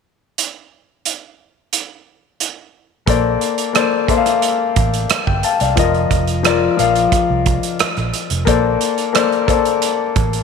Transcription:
0.38 closed hi-hat
1.05 closed hi-hat
1.73 closed hi-hat
2.40 closed hi-hat
3.06 A#1 A#3 A4 C5 D5, kick, closed hi-hat
3.41 closed hi-hat
3.58 closed hi-hat
3.73 A#3 A4 C5 D5, cross-stick, closed hi-hat
4.07 A#3 A4 C5 E5, kick, closed hi-hat
4.17 F5
4.26 cross-stick, closed hi-hat
4.42 closed hi-hat
4.76 A1, kick, closed hi-hat
4.94 closed hi-hat
5.10 cross-stick, closed hi-hat
5.27 G1 G5, kick
5.43 F5 A5, closed hi-hat
5.60 C2 D5 F5, closed hi-hat
5.76 F1 F3 F4 A#4 D#5, kick, closed hi-hat
5.94 closed hi-hat
6.11 F1, kick, closed hi-hat
6.27 closed hi-hat
6.43 F3 F4 A#4 D5, cross-stick, closed hi-hat
6.77 A#1 F3 F4 A#4 F5, closed hi-hat
6.95 closed hi-hat
7.12 muted fingered electric bass stroke, kick, closed hi-hat
7.30 C2
7.46 kick, closed hi-hat
7.63 closed hi-hat
7.79 muted fingered electric bass stroke, cross-stick, closed hi-hat
7.97 A#1, cross-stick, closed hi-hat
8.14 closed hi-hat
8.30 F1, closed hi-hat
8.45 A#1 A#3 A4 C5 D5, kick, closed hi-hat
8.81 closed hi-hat
8.98 closed hi-hat
9.13 A#3 A4 C5 D5, cross-stick, closed hi-hat
9.32 closed hi-hat
9.46 A#3 A4 C5 D5, kick, closed hi-hat
9.65 closed hi-hat
9.82 closed hi-hat
10.16 A1, kick, closed hi-hat
10.33 closed hi-hat

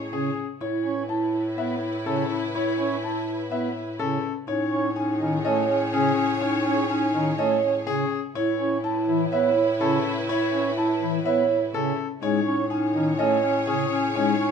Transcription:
Already playing: A2 G#4 C#5
0.12 C#3 C#4 G#4
0.61 A2 E4 B4 C#5
0.85 C#4 E4
1.09 E4 A5
1.33 E4
1.57 B3 E4 E5
1.82 E4
2.05 C#3 C#4 E4 A4
2.31 E4
2.54 E4 C#5
2.78 C#4 E4
3.03 E4 A5
3.28 E4
3.51 B3 E4 E5
3.77 E4
3.99 C#3 C#4 E4 A4
4.47 A2 C#4 D#4 G#4 C#5
4.71 C#4
4.96 C#4 D#4 G#5
5.20 D#3 C#4
5.45 A3 C#4 C#5 D#5
5.69 C#4
5.93 C#3 C#4 G#4
6.17 C#4
6.41 C#4 D#4 C#5
6.65 C#4
6.90 C#4 D#4 G#5
7.14 D#3 C#4
7.38 A3 C#4 C#5 D#5
7.63 C#4
7.86 C#3 C#4 G#4
8.35 A2 E4 B4 C#5
8.59 C#4 E4
8.84 E4 A5
9.08 E3 E4
9.32 B3 E4 C#5 E5
9.56 E4
9.80 C#3 C#4 E4 A4
10.04 E4
10.28 E4 C#5
10.53 C#4 E4
10.77 E4 A5
11.01 E3 E4
11.25 B3 E4 C#5 E5
11.50 E4
11.74 C#3 C#4 E4 A4
12.22 A2 G#3 C#4 D#4 G#4 C#5
12.46 C#4
12.70 C#4 D#4 G#5
12.95 D#3 C#4
13.19 A3 C#4 C#5 D#5
13.43 C#4
13.67 C#3 C#4 G#4
13.92 C#4
14.15 G#3 C#4 D#4 C#5
14.40 C#4

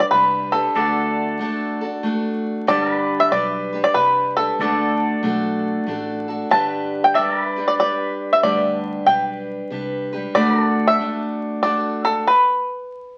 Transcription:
Already playing: G3 D4 G4 B4 D5
0.11 C2 G3 D4 G4 B4
0.15 B4
0.52 G3 D4 G4 A4 B4
0.75 D2 D3 A3 D4 F#4 A4 D5
1.39 A3 D4 F#4 A4
1.81 D4 F#4 A4
2.03 A3 D4 F#4 A4
2.67 G1 G2 D3 G3 D4 G4 A4 B4 D5
2.93 B4
3.20 E5
3.31 B1 G3 D4 G4 B4 D5
3.73 G3 D4 G4 B4
3.84 D5
3.94 C2 G3 D4 G4 B4
3.99 B4
4.37 G3 D4 G4 A4 B4
4.59 D2 D3 A3 D4 F#4 A4 D5
5.23 B1 A3 D4 F#4 A4
5.86 A1 A3 D4 F#4 A4
6.28 D4 F#4 A4
6.50 G1 G2 D3 G3 D4 G4 B4 A5
7.04 G5
7.14 G3 D4 G4 A4 B4 D5 E5
7.39 B4
7.56 G3 D4 G4 B4
7.68 D5
7.78 G3 D4 G4 B4 D5
8.33 E5
8.43 D2 G2 D3 G3 D4 G4 B4 D5
9.06 B1 G3 D4 G4 B4 G5
9.70 C2 G3 D4 G4 B4
10.13 G3 D4 G4 B4
10.35 D2 D3 A3 D4 F#4 A4 B4 D5
10.61 A4
10.88 E5
10.99 A3 D4 F#4 A4
11.63 A3 D4 F#4 A4 D5
12.04 D4 F#4 A4
12.27 B4

